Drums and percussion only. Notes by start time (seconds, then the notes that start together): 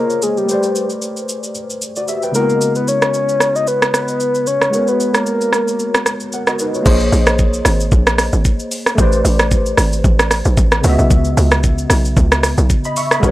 0.10 shaker
0.22 shaker
0.37 shaker
0.49 shaker
0.63 shaker
0.76 shaker
0.90 shaker
1.02 shaker
1.17 shaker
1.29 shaker
1.43 shaker
1.55 shaker
1.70 shaker
1.82 shaker
1.96 shaker
2.08 shaker
2.22 shaker
2.34 shaker
2.50 shaker
2.61 shaker
2.75 shaker
2.88 shaker
3.02 cross-stick, shaker
3.14 shaker
3.29 shaker
3.40 cross-stick, shaker
3.56 shaker
3.67 shaker
3.82 cross-stick, shaker
3.94 cross-stick, shaker
4.08 shaker
4.20 shaker
4.35 shaker
4.47 shaker
4.62 cross-stick, shaker
4.73 shaker
4.87 shaker
5.00 shaker
5.14 cross-stick, shaker
5.26 shaker
5.41 shaker
5.53 cross-stick, shaker
5.68 shaker
5.79 shaker
5.95 cross-stick, shaker
6.06 cross-stick, shaker
6.20 shaker
6.32 shaker
6.47 cross-stick, shaker
6.59 shaker
6.74 shaker
6.86 kick, crash, shaker
7.00 shaker
7.12 open hi-hat, shaker
7.27 cross-stick, shaker
7.39 kick, shaker
7.53 shaker
7.65 cross-stick, open hi-hat, shaker
7.80 shaker
7.92 kick, shaker
8.07 cross-stick, shaker
8.18 cross-stick, open hi-hat, shaker
8.33 shaker
8.45 kick, shaker
8.59 shaker
8.71 open hi-hat, shaker
8.86 cross-stick, shaker
8.98 kick, shaker
9.12 shaker
9.25 open hi-hat, shaker
9.39 cross-stick, shaker
9.51 kick, shaker
9.66 shaker
9.77 cross-stick, open hi-hat, shaker
9.93 shaker
10.04 kick, shaker
10.19 cross-stick, shaker
10.31 cross-stick, open hi-hat, shaker
10.45 shaker
10.57 kick, shaker
10.72 cross-stick, shaker
10.84 open hi-hat, shaker
10.99 shaker
11.10 kick, shaker
11.25 shaker
11.37 open hi-hat, shaker
11.51 cross-stick, shaker
11.63 kick, shaker
11.78 shaker
11.90 cross-stick, open hi-hat, shaker
12.05 shaker
12.17 kick, shaker
12.32 cross-stick, shaker
12.43 cross-stick, open hi-hat, shaker
12.58 shaker
12.70 kick, shaker
12.84 shaker
12.96 open hi-hat, shaker
13.11 cross-stick, shaker
13.23 kick, shaker